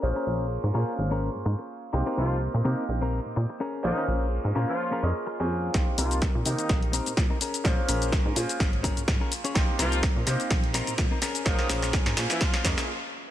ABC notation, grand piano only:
X:1
M:4/4
L:1/16
Q:"Swing 16ths" 1/4=126
K:Bbdor
V:1 name="Grand piano"
[B,DFAc]6 [B,DFAc]8- [B,DFAc]2 | [B,CEGc]6 [B,CEGc]8 z2 | [B,DFAc]6 [B,DFAc]4 [B,DFAe]3 [B,DFAc]3 | [CEG]6 [B,CEGc]8 z2 |
[B,DFAc]6 [B,DFAc]8- [B,DFAc]2 | [B,CEGc]6 [B,CEGc]8 z2 | [B,DFAc]6 [B,DFAc]4 [B,DFAe]2 z4 |]